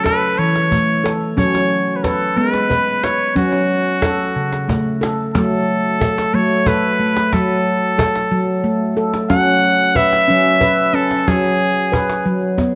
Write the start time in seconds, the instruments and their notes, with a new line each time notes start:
Already playing: handpan F#3
0.04 handpan A4, muted trumpet B4, cajon bass, cajon slap
0.39 handpan E3, muted trumpet C#5, cajon slap
0.56 cajon slap
0.71 handpan A3, cajon bass
1.04 handpan A4, cajon slap
1.37 handpan F#3 C#4, muted trumpet C#5, cajon bass
1.55 cajon slap
1.96 muted trumpet B4
2.03 muted trumpet A4, handpan B4, cajon bass, cajon slap
2.36 handpan G#3 B3, muted trumpet B4, cajon slap
2.54 cajon slap
2.70 handpan B4, cajon bass
3.04 muted trumpet C#5, cajon slap
3.35 handpan F#3 C#4, muted trumpet F#4, cajon bass, cajon slap
3.52 cajon slap
4.02 handpan A4, cajon bass, cajon slap
4.20 cajon slap
4.36 handpan C#3
4.53 cajon slap
4.68 handpan A3, cajon bass
5.01 handpan A4, cajon slap
5.19 cajon slap
5.34 handpan F#3 A3, muted trumpet A4, cajon bass, cajon slap
6.01 handpan A4, cajon bass
6.18 cajon slap
6.34 handpan F#3 A3, muted trumpet C#5
6.66 handpan A4, muted trumpet B4, cajon bass
7.00 handpan A3
7.17 cajon slap
7.33 handpan F#3, muted trumpet A4, cajon bass, cajon slap
7.98 handpan A4, cajon bass
8.15 cajon slap
8.31 handpan F#3
8.64 handpan A3
8.97 handpan A4
9.14 cajon slap
9.30 handpan F#3 C#4, muted trumpet F#5, cajon bass, cajon slap
9.95 handpan B4, muted trumpet E5, cajon bass
10.13 cajon slap
10.28 handpan F#3 C#4
10.61 handpan B4, cajon bass
10.94 handpan C#4, muted trumpet A4
11.11 cajon slap
11.28 handpan F#3, muted trumpet G#4, cajon bass, cajon slap
11.44 cajon slap
11.77 cajon slap
11.92 handpan B4, cajon bass
12.10 cajon slap
12.26 handpan F#3, cajon slap
12.58 handpan B3, cajon bass, cajon slap